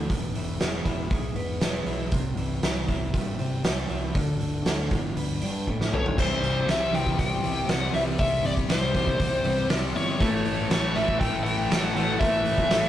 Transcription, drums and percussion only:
0.10 kick, open hi-hat
0.35 open hi-hat
0.60 snare, open hi-hat
0.85 kick, open hi-hat
1.11 kick, open hi-hat
1.36 open hi-hat
1.61 snare, open hi-hat
1.87 open hi-hat
2.12 kick, open hi-hat
2.37 open hi-hat
2.63 snare, open hi-hat
2.88 kick, open hi-hat
3.14 kick, open hi-hat
3.39 open hi-hat
3.64 snare, open hi-hat
3.89 open hi-hat
4.15 kick, open hi-hat
4.40 open hi-hat
4.66 snare, open hi-hat
4.91 kick, open hi-hat
5.17 open hi-hat
5.42 open hi-hat
5.67 kick
5.81 snare
5.93 mid tom
6.06 floor tom
6.18 kick, crash
6.44 open hi-hat
6.69 snare, open hi-hat
6.94 open hi-hat
7.06 kick
7.19 kick, open hi-hat
7.44 open hi-hat
7.69 snare, open hi-hat
7.94 open hi-hat
8.18 kick, open hi-hat
8.45 open hi-hat
8.57 kick
8.69 snare, open hi-hat
8.94 kick, open hi-hat
9.07 kick
9.20 kick, open hi-hat
9.45 open hi-hat
9.70 snare, open hi-hat
9.95 open hi-hat
10.20 kick, open hi-hat
10.45 open hi-hat
10.71 snare, open hi-hat
10.96 open hi-hat
11.08 kick
11.21 kick, open hi-hat
11.46 open hi-hat
11.71 snare, open hi-hat
11.96 open hi-hat
12.21 kick, open hi-hat
12.46 open hi-hat
12.58 kick
12.71 snare, open hi-hat

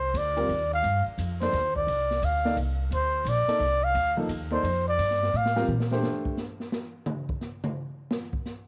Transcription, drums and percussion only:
0.15 hi-hat pedal, ride
0.37 ride
0.49 ride
0.84 ride
1.19 hi-hat pedal, ride
1.41 snare, ride
1.53 snare, ride
1.76 kick
1.88 ride
2.11 snare
2.23 hi-hat pedal, ride
2.45 snare
2.57 ride
2.92 ride
3.26 hi-hat pedal, ride
3.49 ride
3.95 ride
4.29 hi-hat pedal, ride
4.65 ride
4.99 ride
5.11 snare
5.23 snare
5.34 hi-hat pedal
5.46 snare
5.57 snare
5.68 high tom
5.80 snare
5.92 snare
6.03 snare
6.25 kick
6.37 snare, hi-hat pedal
6.60 snare
6.72 snare
7.06 mid tom
7.29 kick
7.41 snare, hi-hat pedal
7.64 mid tom
8.11 snare
8.33 kick
8.45 snare, hi-hat pedal

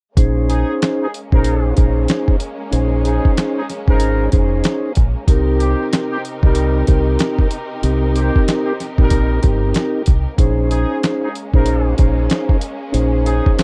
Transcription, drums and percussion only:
0.17 kick, closed hi-hat
0.50 closed hi-hat
0.82 snare, closed hi-hat
1.14 closed hi-hat
1.32 kick
1.44 closed hi-hat
1.77 kick, closed hi-hat
2.08 snare, closed hi-hat
2.28 kick
2.40 closed hi-hat
2.73 closed hi-hat
3.05 closed hi-hat
3.25 kick
3.37 snare, closed hi-hat
3.70 snare, closed hi-hat
3.88 kick
4.00 closed hi-hat
4.32 kick, closed hi-hat
4.64 snare, closed hi-hat
4.95 kick, closed hi-hat
5.28 kick, closed hi-hat
5.60 closed hi-hat
5.93 snare, closed hi-hat
6.25 closed hi-hat
6.43 kick
6.55 closed hi-hat
6.87 kick, closed hi-hat
7.19 snare, closed hi-hat
7.39 kick
7.51 closed hi-hat
7.83 closed hi-hat
8.16 closed hi-hat
8.36 kick
8.48 snare, closed hi-hat
8.80 snare, closed hi-hat
8.98 kick
9.10 kick, closed hi-hat
9.43 kick, closed hi-hat
9.74 snare, closed hi-hat
10.06 kick, closed hi-hat
10.38 kick, closed hi-hat
10.71 closed hi-hat
11.03 snare, closed hi-hat
11.35 closed hi-hat
11.54 kick
11.66 closed hi-hat
11.98 kick, closed hi-hat
12.30 snare, closed hi-hat
12.49 kick
12.61 closed hi-hat
12.94 closed hi-hat
13.26 closed hi-hat
13.46 kick
13.59 snare, closed hi-hat

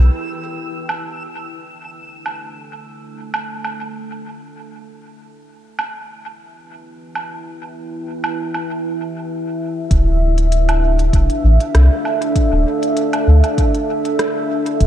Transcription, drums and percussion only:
0.89 low woodblock
2.26 low woodblock
3.34 low woodblock
3.64 low woodblock
5.79 low woodblock
7.15 low woodblock
8.24 low woodblock
8.54 low woodblock
9.91 kick, closed hi-hat
10.38 closed hi-hat
10.52 closed hi-hat
10.69 closed hi-hat, low woodblock
10.99 closed hi-hat
11.13 kick, closed hi-hat
11.30 closed hi-hat
11.60 closed hi-hat
11.75 cross-stick, closed hi-hat
12.05 low woodblock
12.22 closed hi-hat
12.36 kick, closed hi-hat
12.83 closed hi-hat
12.97 closed hi-hat
13.13 closed hi-hat, low woodblock
13.44 closed hi-hat, low woodblock
13.58 kick, closed hi-hat
13.75 closed hi-hat
14.05 closed hi-hat
14.19 cross-stick, closed hi-hat
14.66 closed hi-hat
14.80 kick, closed hi-hat

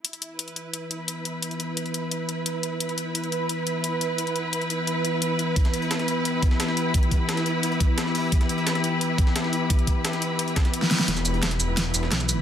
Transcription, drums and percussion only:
0.05 closed hi-hat
0.13 closed hi-hat
0.22 closed hi-hat
0.39 closed hi-hat
0.48 closed hi-hat
0.56 closed hi-hat
0.74 closed hi-hat
0.91 closed hi-hat
1.08 closed hi-hat
1.25 closed hi-hat
1.42 closed hi-hat
1.51 closed hi-hat
1.60 closed hi-hat
1.77 closed hi-hat
1.86 closed hi-hat
1.94 closed hi-hat
2.11 closed hi-hat
2.29 closed hi-hat
2.46 closed hi-hat
2.63 closed hi-hat
2.80 closed hi-hat
2.89 closed hi-hat
2.98 closed hi-hat
3.15 closed hi-hat
3.24 closed hi-hat
3.32 closed hi-hat
3.49 closed hi-hat
3.67 closed hi-hat
3.84 closed hi-hat
4.01 closed hi-hat
4.18 closed hi-hat
4.27 closed hi-hat
4.36 closed hi-hat
4.53 closed hi-hat
4.61 closed hi-hat
4.70 closed hi-hat
4.87 closed hi-hat
5.05 closed hi-hat
5.22 closed hi-hat
5.39 closed hi-hat
5.56 kick, closed hi-hat
5.65 snare, closed hi-hat
5.74 closed hi-hat
5.82 closed hi-hat
5.91 snare, closed hi-hat
5.99 snare, closed hi-hat
6.08 closed hi-hat
6.25 closed hi-hat
6.42 kick, closed hi-hat
6.51 snare
6.60 snare, closed hi-hat
6.68 snare
6.77 closed hi-hat
6.94 kick, closed hi-hat
7.03 closed hi-hat
7.11 kick, closed hi-hat
7.29 snare, closed hi-hat
7.37 snare, closed hi-hat
7.46 closed hi-hat
7.63 closed hi-hat
7.72 closed hi-hat
7.80 kick, closed hi-hat
7.98 snare, closed hi-hat
8.06 snare
8.15 closed hi-hat, open hi-hat
8.32 kick, closed hi-hat
8.41 snare, closed hi-hat
8.49 closed hi-hat
8.58 closed hi-hat
8.67 snare, closed hi-hat
8.75 snare, closed hi-hat
8.84 closed hi-hat
9.01 closed hi-hat
9.18 kick, closed hi-hat
9.27 snare
9.36 snare, closed hi-hat
9.44 snare
9.53 closed hi-hat
9.70 kick, closed hi-hat
9.79 closed hi-hat
9.87 kick, closed hi-hat
10.05 snare, closed hi-hat
10.13 snare, closed hi-hat
10.22 closed hi-hat
10.39 closed hi-hat
10.48 closed hi-hat
10.56 kick, snare, closed hi-hat
10.65 snare, closed hi-hat
10.73 closed hi-hat
10.82 snare
10.91 snare, closed hi-hat
10.99 snare
11.08 kick, snare, closed hi-hat
11.17 snare, closed hi-hat, shaker
11.25 closed hi-hat, shaker
11.34 closed hi-hat
11.43 kick, snare, closed hi-hat
11.51 snare, closed hi-hat
11.60 closed hi-hat, shaker
11.77 kick, snare, closed hi-hat
11.94 closed hi-hat, shaker
12.03 snare
12.12 kick, snare, closed hi-hat
12.20 snare, shaker
12.29 closed hi-hat, shaker

